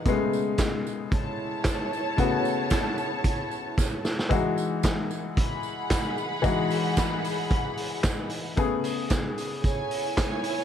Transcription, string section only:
X:1
M:4/4
L:1/8
Q:1/4=113
K:Alyd
V:1 name="String section"
z4 [Eca]4- | [Eca]8 | z4 [Gfb]4- | [Gfb]8 |
z4 [Ecg]4 |]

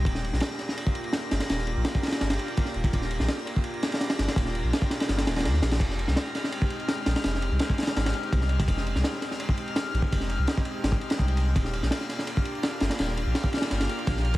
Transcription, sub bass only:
X:1
M:4/4
L:1/16
Q:1/4=167
K:Fdor
V:1 name="Sub bass" clef=bass
E,,,3 B,,, z8 z2 G,,, z | E,,,3 B,,, z4 G,,,2 z4 E,,,2 | E,,,3 B,,, z8 z2 G,,, z | E,,,3 B,,, z4 G,,,2 E,,,2 E,,2 B,,,2 |
F,,,3 C,, z8 z2 B,,, z | F,,,3 C,, z4 A,,,2 z2 C,,4 | F,,,3 C,, z8 z2 B,,, z | F,,,3 C,, z4 A,,,2 z2 C,,4 |
E,,,3 B,,, z8 z2 G,,, z | E,,,3 B,,, z4 G,,,2 z2 B,,,4 |]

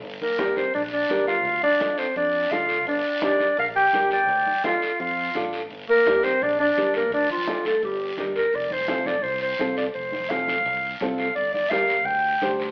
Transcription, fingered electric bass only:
X:1
M:4/4
L:1/8
Q:1/4=170
K:Gm
V:1 name="Fingered electric bass" clef=bass
G,,, z3 B,,,2 G,,,2 | D,, z3 F,,2 D,,2 | G,,, z3 B,,,2 G,,,2 | D,, z3 F,,2 A,,,2 |
G,,, z3 B,,,2 G,,,2 | D,, z3 G,,,2 G,,,2 | F,,,4 C,,2 C,,2 | F,,,4 C,,2 C,,2 |
G,,,4 D,,2 D,,2 |]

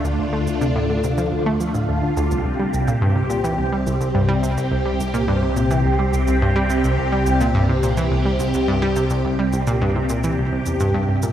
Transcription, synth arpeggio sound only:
X:1
M:4/4
L:1/16
Q:1/4=106
K:Cmix
V:1 name="Synth arpeggio sound" clef=bass
D,, D,, A, D,, C, A,, D, C, F, D,, A, F, A,, D,, D,, D,, | C,, C,, G, C,, B,, G,, C, B,, E, C,, G, C,, C,, G,, G, C, | C,, C,, G, C,, B,, G,, C, B,, E, C,, G, C,, C,, G,, G, C, | C,, C,, G, C,, B,, G,, C, B,, E, C,, G, C,, C,, G,, G, C, |
C,, C,, G, C,, B,, G,, C, B,, E, C,, C,, E,, G,, G,, G,, B,, |]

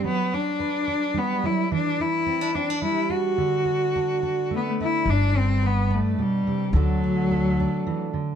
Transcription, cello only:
X:1
M:3/4
L:1/16
Q:1/4=108
K:G
V:1 name="Cello"
B,2 D6 B,2 E2 | D2 E4 D2 E2 F2- | F8 A,/2 B,/2 A, E2 | D2 C2 B,2 A,2 G,4 |
F,8- F,2 z2 |]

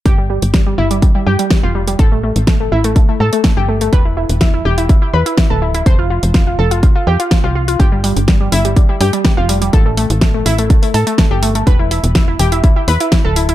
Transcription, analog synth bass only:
X:1
M:4/4
L:1/16
Q:1/4=124
K:Flyd
V:1 name="Analog synth bass" clef=bass
G,,,3 G,,,3 G,,,3 z G,, z2 F,,,3 | A,,,3 A,,,3 A,,,3 z A,, z2 G,,,3 | E,,,3 E,,,3 E,,,3 z E,, z2 D,,,3 | F,,,3 F,,,3 F,,,3 z F,, z2 C,,3 |
G,,,3 G,,,3 G,,,3 z G,, z2 F,,,3 | A,,,3 A,,,3 A,,,3 z A,, z2 G,,,3 | E,,,3 E,,,3 E,,,3 z E,, z2 D,,,3 |]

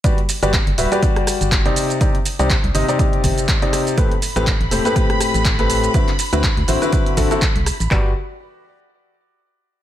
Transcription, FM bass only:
X:1
M:4/4
L:1/16
Q:"Swing 16ths" 1/4=122
K:G
V:1 name="FM bass" clef=bass
z3 G,,, z G,,, D,,, z4 G,,,2 z3 | z3 C,, z C,, G,,, z3 G,,, z4 z | z3 A,,, z A,,, E,,, z4 A,,,4 z | z3 D,, z D,, A,,, z3 A,,, z2 C,, z A,,, |
G,,,2 z12 z2 |]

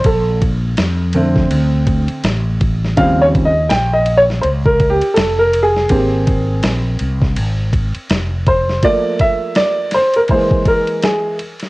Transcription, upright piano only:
X:1
M:4/4
L:1/16
Q:"Swing 16ths" 1/4=82
K:Bblyd
V:1 name="Upright piano"
A2 z12 z2 | (3f2 _d2 _e2 (3g2 e2 d2 (3c2 B2 G2 (3A2 B2 _A2- | _A4- A z8 z c2 | d2 e2 d2 c B c2 B2 ^G2 z2 |]
V:2 name="Upright piano"
z6 [D,A,C]6 z4 | [_D,F,G,C]2 z12 z2 | [B,CG]16 | [F,A,B,]6 z2 [E,^G,B,]6 z2 |]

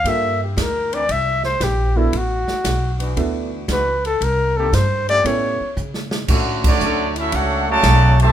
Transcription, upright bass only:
X:1
M:4/4
L:1/8
Q:"Swing" 1/4=115
K:Cdor
V:1 name="Upright bass" clef=bass
G,,2 D,,2 C,,2 B,,,2 | A,,, z =B,,,2 D,,2 _D,,2 | C,,2 G,,2 A,, z ^C,2 | [K:D] A,,2 D,,2 C,,2 B,,,2 |]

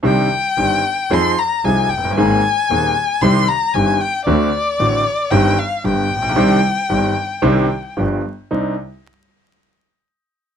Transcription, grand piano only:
X:1
M:4/4
L:1/16
Q:1/4=113
K:Cm
V:1 name="Grand piano" clef=bass
[C,,C,E,CDG]2 z2 [G,,,G,,E,CDG]2 z2 [F,,F,CEA]2 z2 [C,,C,F,CEA]2 z/2 F,,,/2 ^F,,,/2 G,,,/2 | [A,,,A,,E,B,CA]2 z2 [E,,,E,,E,B,CA]2 z2 [C,,C,E,G,CG]2 z2 [G,,,G,,E,G,CG]2 z2 | [D,,D,=A,C^F]2 z2 [=A,,,=A,,D,A,CF]2 z2 [G,,,G,,E,G,CG]2 z2 [G,,,G,,D,G,=B,G]2 z/2 A,,,/2 _B,,,/2 =B,,,/2 | [C,,C,E,CDG]2 z2 [G,,,G,,E,CDG]2 z2 [C,,C,E,CDG]2 z2 [G,,,G,,F,=B,DG]2 z2 |
[C,,CDE]2 z12 z2 |]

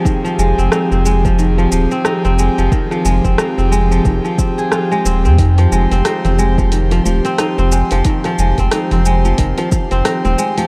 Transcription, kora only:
X:1
M:4/4
L:1/16
Q:"Swing 16ths" 1/4=90
K:Fm
V:1 name="Kora" clef=bass
E, F, A, C E C A, F, E, F, F, C E C A, F, | E, F, A, C E C A, F, E, F, C A F A, C C | E, F, A, C E C A, F, E, F, F, C E C A, F, | E, F, A, C E C A, F, E, F, F, C E C A, F, |]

